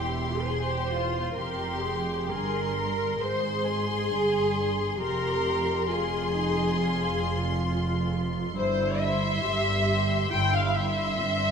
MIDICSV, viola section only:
0, 0, Header, 1, 2, 480
1, 0, Start_track
1, 0, Key_signature, -4, "minor"
1, 0, Tempo, 914634
1, 718, Time_signature, 4, 2, 24, 8
1, 2158, Tempo, 883652
1, 6178, End_track
2, 0, Start_track
2, 0, Title_t, "Viola section"
2, 0, Program_c, 0, 48
2, 0, Note_on_c, 0, 64, 54
2, 221, Note_on_c, 0, 72, 66
2, 228, Note_off_c, 0, 64, 0
2, 706, Note_on_c, 0, 70, 62
2, 710, Note_off_c, 0, 72, 0
2, 949, Note_on_c, 0, 68, 61
2, 950, Note_off_c, 0, 70, 0
2, 1198, Note_off_c, 0, 68, 0
2, 1200, Note_on_c, 0, 70, 69
2, 1677, Note_on_c, 0, 68, 75
2, 1681, Note_off_c, 0, 70, 0
2, 2619, Note_off_c, 0, 68, 0
2, 2640, Note_on_c, 0, 67, 68
2, 3112, Note_off_c, 0, 67, 0
2, 3124, Note_on_c, 0, 65, 60
2, 3359, Note_on_c, 0, 63, 63
2, 3362, Note_off_c, 0, 65, 0
2, 3594, Note_on_c, 0, 65, 72
2, 3598, Note_off_c, 0, 63, 0
2, 4566, Note_off_c, 0, 65, 0
2, 4579, Note_on_c, 0, 64, 73
2, 5033, Note_off_c, 0, 64, 0
2, 5049, Note_on_c, 0, 67, 67
2, 5276, Note_off_c, 0, 67, 0
2, 5282, Note_on_c, 0, 67, 70
2, 5515, Note_off_c, 0, 67, 0
2, 5516, Note_on_c, 0, 64, 69
2, 5997, Note_on_c, 0, 60, 68
2, 5999, Note_off_c, 0, 64, 0
2, 6178, Note_off_c, 0, 60, 0
2, 6178, End_track
0, 0, End_of_file